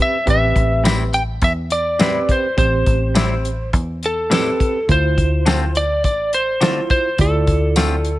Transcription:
Already playing: E2 C4 G4 B4
0.02 E5
0.26 A1 C4 G4 B4, kick, closed hi-hat
0.30 E5
0.56 A1, kick, closed hi-hat
0.84 A2 G3 C4 E4, snare, closed hi-hat, tambourine
1.13 G5, closed hi-hat
1.42 E2 E5, kick, closed hi-hat
1.70 D5, closed hi-hat
1.99 A2 G3 C4 E4 G4 B4, snare, closed hi-hat, tambourine
2.29 C5, kick, closed hi-hat
2.57 A1 C4 G4 C5, kick, closed hi-hat
2.87 A1, kick, closed hi-hat
3.15 A2 G3 C4 E4, snare, closed hi-hat, tambourine
3.45 closed hi-hat
3.73 E2, kick, closed hi-hat
4.03 A4, closed hi-hat
4.30 A2 G3 C4 E4 G4 A4 B4, snare, closed hi-hat, tambourine
4.60 kick, closed hi-hat
4.88 D2 E4 F4 C5, kick, closed hi-hat
5.18 D2, kick, closed hi-hat
5.46 D3 A3 C4 F4, snare, closed hi-hat, tambourine
5.75 D5, closed hi-hat
6.04 A1 D5, kick, closed hi-hat
6.33 C5, closed hi-hat
6.61 D3 A3 C4 E4 F4 C5, snare, closed hi-hat, tambourine
6.90 C5, kick, closed hi-hat
7.18 D2 E4 F4 A4 D5, kick, closed hi-hat
7.47 D2, kick, closed hi-hat
7.76 D3 A3 C4 F4, snare, closed hi-hat, tambourine
8.05 closed hi-hat

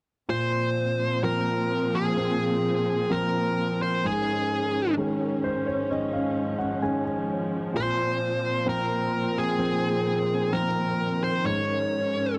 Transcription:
0.29 A#2 F3 C4 C5
1.23 F3 A#3 C4 A#4
1.95 G#4
2.16 F3 A#3 C4
3.10 F3 A#3 C4 A#4
3.82 C5
4.04 G#2 D#3 C#4 G#4
4.97 D#3 G#3 C#4
5.44 C5
5.67 C#5
5.91 D#3 F3 G#3 C#4 D#5
6.13 F5
6.59 F#5
6.82 D#3 G#3 C#4 G#5
7.05 G#5
7.74 A#2 C4 C5
8.65 F3 A#3 C4 A#4
9.38 G#4
9.59 D#3 F3 A#3 C4
10.52 F3 A#3 C4 A#4
11.24 C5
11.45 G#2 C#4 C#5

